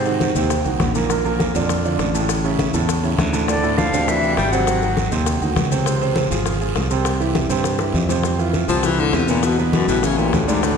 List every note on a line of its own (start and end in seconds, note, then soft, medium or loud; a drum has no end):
0.00 0.30 G#2 medium
0.00 0.36 C3 medium
0.00 0.37 C5 medium
0.05 0.30 D#3 medium
0.05 0.31 D#4 medium
0.05 0.31 F#4 medium
0.05 high bongo soft
0.05 high conga soft
0.05 maracas soft
0.20 high bongo medium
0.20 high conga medium
0.20 short guiro medium
0.20 maracas soft
0.35 0.63 D#2 medium
0.35 0.60 C3 medium
0.35 0.60 C4 medium
0.35 0.60 C5 medium
0.35 high conga soft
0.35 short guiro medium
0.35 maracas medium
0.50 high bongo medium
0.50 high conga soft
0.50 long guiro medium
0.50 maracas medium
0.65 0.79 C2 medium
0.65 0.89 D#3 medium
0.65 0.90 D#4 medium
0.65 0.90 F#4 medium
0.65 high bongo soft
0.65 high conga soft
0.65 maracas soft
0.80 1.49 A#1 medium
0.80 high bongo medium
0.80 low bongo medium
0.80 high conga medium
0.80 short guiro medium
0.80 maracas soft
0.95 1.08 A#2 medium
0.95 1.08 A#3 medium
0.95 1.08 A#4 medium
0.95 high bongo soft
0.95 high conga soft
0.95 short guiro medium
0.95 maracas medium
1.10 1.23 A#2 medium
1.10 1.23 A#3 medium
1.10 1.23 A#4 medium
1.10 high bongo medium
1.10 high conga soft
1.10 long guiro medium
1.10 maracas medium
1.25 1.50 A#2 medium
1.25 1.50 A#3 medium
1.25 1.50 A#4 medium
1.25 high conga soft
1.25 maracas soft
1.39 high bongo medium
1.39 high conga medium
1.39 short guiro medium
1.39 maracas soft
1.55 1.96 F2 medium
1.55 1.80 D3 medium
1.55 1.80 D4 medium
1.55 1.80 F4 medium
1.55 short guiro medium
1.55 maracas medium
1.69 high bongo medium
1.69 high conga soft
1.69 long guiro medium
1.69 maracas medium
1.85 2.09 D3 medium
1.85 2.09 D4 medium
1.85 2.10 F4 medium
1.85 high conga soft
1.85 maracas soft
1.99 2.68 A1 medium
1.99 high bongo medium
1.99 low bongo medium
1.99 high conga soft
1.99 short guiro medium
1.99 maracas soft
2.15 2.39 A2 medium
2.15 2.39 A3 medium
2.15 2.39 A4 medium
2.15 high conga soft
2.15 short guiro medium
2.15 maracas medium
2.29 high bongo medium
2.29 high conga soft
2.29 long guiro medium
2.29 maracas medium
2.44 2.69 C#3 medium
2.44 2.69 C#4 medium
2.44 2.69 E4 medium
2.44 high bongo soft
2.44 high conga soft
2.44 maracas soft
2.59 high bongo medium
2.59 high conga medium
2.59 short guiro medium
2.59 maracas soft
2.74 3.15 E2 medium
2.74 2.98 A2 medium
2.74 2.98 A3 medium
2.74 2.99 A4 medium
2.74 high conga soft
2.74 short guiro medium
2.74 maracas medium
2.89 high bongo medium
2.89 high conga soft
2.89 long guiro medium
2.89 maracas medium
3.03 3.28 C#3 medium
3.03 3.28 C#4 medium
3.03 3.28 E4 medium
3.03 high bongo soft
3.03 high conga soft
3.03 maracas soft
3.18 3.87 D2 medium
3.18 high bongo medium
3.18 low bongo medium
3.18 high conga medium
3.18 short guiro medium
3.18 maracas soft
3.33 3.45 A2 medium
3.33 3.46 A3 medium
3.33 3.46 A4 medium
3.33 high bongo soft
3.33 high conga soft
3.33 short guiro medium
3.33 maracas medium
3.48 3.60 A2 medium
3.48 3.80 D3 medium
3.48 3.61 A3 medium
3.48 3.61 A4 medium
3.48 3.79 D5 medium
3.48 high bongo medium
3.48 high conga soft
3.48 long guiro medium
3.48 maracas medium
3.63 3.88 A2 medium
3.63 3.88 A3 medium
3.63 3.88 A4 medium
3.63 high conga soft
3.63 maracas soft
3.78 4.10 F3 medium
3.78 4.09 F5 medium
3.78 high bongo medium
3.78 high conga medium
3.78 short guiro medium
3.78 maracas soft
3.93 4.34 D2 medium
3.93 4.17 C3 medium
3.93 4.18 C4 medium
3.93 4.18 D4 medium
3.93 short guiro medium
3.93 maracas medium
4.08 4.37 E3 medium
4.08 4.36 E5 medium
4.08 high bongo medium
4.08 high conga soft
4.08 long guiro medium
4.08 maracas medium
4.23 4.47 C3 medium
4.23 4.47 C4 medium
4.23 4.48 D4 medium
4.23 high conga soft
4.23 maracas soft
4.37 5.06 G#1 medium
4.37 4.54 G3 medium
4.37 4.53 G5 medium
4.37 high bongo medium
4.37 low bongo medium
4.37 high conga soft
4.37 short guiro medium
4.37 maracas soft
4.52 4.77 C3 medium
4.52 5.12 F#3 medium
4.52 4.77 C4 medium
4.52 4.77 C5 medium
4.52 5.12 F#5 medium
4.52 high conga soft
4.52 short guiro medium
4.52 maracas medium
4.67 high bongo medium
4.67 high conga soft
4.67 long guiro medium
4.67 maracas medium
4.82 5.07 D#3 medium
4.82 5.07 D#4 medium
4.82 5.07 F#4 medium
4.82 high bongo soft
4.82 high conga soft
4.82 maracas soft
4.97 high bongo medium
4.97 high conga medium
4.97 short guiro medium
4.97 maracas soft
5.12 5.39 D#2 medium
5.12 5.36 C3 medium
5.12 5.36 C4 medium
5.12 5.37 C5 medium
5.12 high conga soft
5.12 short guiro medium
5.12 maracas medium
5.26 high bongo medium
5.26 high conga soft
5.26 long guiro medium
5.26 maracas medium
5.41 5.55 D2 medium
5.41 5.66 D#3 medium
5.41 5.66 D#4 medium
5.41 5.66 F#4 medium
5.41 high bongo soft
5.41 high conga soft
5.41 maracas soft
5.56 6.25 C#2 medium
5.56 high bongo medium
5.56 low bongo medium
5.56 high conga medium
5.56 short guiro medium
5.56 maracas soft
5.71 5.84 C3 medium
5.71 5.84 C4 medium
5.71 5.84 C5 medium
5.71 high bongo soft
5.71 high conga soft
5.71 short guiro medium
5.71 maracas medium
5.86 5.98 C3 medium
5.86 5.99 C4 medium
5.86 5.99 C5 medium
5.86 high bongo medium
5.86 high conga soft
5.86 long guiro medium
5.86 maracas medium
6.01 6.26 C3 medium
6.01 6.26 C4 medium
6.01 6.26 C5 medium
6.01 high conga soft
6.01 maracas soft
6.16 high bongo medium
6.16 high conga medium
6.16 short guiro medium
6.16 maracas soft
6.30 6.72 G#1 medium
6.30 6.55 F3 medium
6.30 6.55 F4 medium
6.30 6.56 G#4 medium
6.30 short guiro medium
6.30 maracas medium
6.46 high bongo medium
6.46 high conga soft
6.46 long guiro medium
6.46 maracas medium
6.61 6.85 F3 medium
6.61 6.85 F4 medium
6.61 6.85 G#4 medium
6.61 high conga soft
6.61 maracas soft
6.76 7.44 C2 medium
6.76 high bongo medium
6.76 low bongo medium
6.76 high conga soft
6.76 short guiro medium
6.76 maracas soft
6.91 7.15 C3 medium
6.91 7.15 C4 medium
6.91 7.15 C5 medium
6.91 high conga soft
6.91 short guiro medium
6.91 maracas medium
7.05 high bongo medium
7.05 high conga soft
7.05 long guiro medium
7.05 maracas medium
7.20 7.45 E3 medium
7.20 7.45 E4 medium
7.20 7.45 G4 medium
7.20 high bongo soft
7.20 high conga soft
7.20 maracas soft
7.35 high bongo medium
7.35 high conga medium
7.35 short guiro medium
7.35 maracas soft
7.49 7.91 G2 medium
7.49 7.74 C3 medium
7.49 7.74 C4 medium
7.49 7.74 C5 medium
7.49 high conga soft
7.49 short guiro medium
7.49 maracas medium
7.64 high bongo medium
7.64 high conga soft
7.64 long guiro medium
7.64 maracas medium
7.79 8.04 E3 medium
7.79 8.04 E4 medium
7.79 8.04 G4 medium
7.79 high bongo medium
7.79 high conga soft
7.79 maracas soft
7.94 8.63 F2 medium
7.94 high conga medium
7.94 short guiro medium
7.94 maracas soft
8.09 8.22 C3 medium
8.09 8.22 C4 medium
8.09 8.22 C5 medium
8.09 low bongo medium
8.09 high conga soft
8.09 short guiro medium
8.09 maracas medium
8.23 8.37 C3 medium
8.23 8.36 C4 medium
8.23 8.37 C5 medium
8.23 high bongo medium
8.23 high conga soft
8.23 long guiro medium
8.23 maracas medium
8.39 8.63 E3 medium
8.39 8.64 E4 medium
8.39 8.64 F4 medium
8.39 high conga soft
8.39 maracas soft
8.53 high bongo medium
8.53 high conga medium
8.53 short guiro medium
8.53 maracas soft
8.68 9.10 C2 medium
8.68 8.93 C3 medium
8.68 8.86 F3 medium
8.68 8.93 C4 medium
8.68 8.93 C5 medium
8.68 short guiro medium
8.68 maracas medium
8.83 9.01 E3 medium
8.83 high bongo medium
8.83 high conga soft
8.83 maracas medium
8.99 9.17 D3 medium
8.99 9.23 E3 medium
8.99 9.23 E4 medium
8.99 9.23 F4 medium
8.99 high conga soft
8.99 maracas soft
9.13 9.82 E2 medium
9.13 9.29 C3 medium
9.13 high bongo medium
9.13 low bongo medium
9.13 high conga soft
9.13 short guiro medium
9.13 maracas soft
9.28 9.45 A#2 medium
9.28 9.53 B2 medium
9.28 9.53 B3 medium
9.28 9.53 B4 medium
9.28 high conga soft
9.28 short guiro medium
9.28 maracas medium
9.43 9.59 B2 medium
9.43 high bongo medium
9.43 high conga soft
9.43 long guiro medium
9.43 maracas medium
9.58 9.75 D2 soft
9.58 9.83 B2 medium
9.58 9.83 B3 medium
9.58 9.83 B4 medium
9.58 high bongo soft
9.58 high conga soft
9.58 maracas soft
9.73 9.88 F#2 medium
9.73 high bongo medium
9.73 high conga medium
9.73 short guiro medium
9.73 maracas soft
9.88 10.30 A1 medium
9.88 10.06 B2 medium
9.88 10.00 E3 medium
9.88 10.00 E4 medium
9.88 10.01 G4 medium
9.88 high conga soft
9.88 short guiro medium
9.88 maracas medium
10.03 10.19 C#3 medium
10.03 10.15 E3 medium
10.03 10.15 E4 medium
10.03 10.16 G4 medium
10.03 high bongo medium
10.03 high conga soft
10.03 long guiro medium
10.03 maracas medium
10.18 10.35 A#2 medium
10.18 10.42 E3 medium
10.18 10.43 E4 medium
10.18 10.43 G4 medium
10.18 high bongo soft
10.18 high conga soft
10.18 maracas soft
10.33 10.77 D2 medium
10.33 10.49 A2 medium
10.33 high bongo medium
10.33 low bongo medium
10.33 high conga medium
10.33 short guiro medium
10.33 maracas soft
10.48 10.65 G#2 medium
10.48 10.60 D3 medium
10.48 10.60 D4 medium
10.48 10.60 D5 medium
10.48 high bongo soft
10.48 high conga soft
10.48 short guiro medium
10.48 maracas medium
10.63 10.77 A2 medium
10.63 10.75 D3 medium
10.63 10.75 D4 medium
10.63 10.75 D5 medium
10.63 high bongo medium
10.63 high conga soft
10.63 long guiro medium
10.63 maracas medium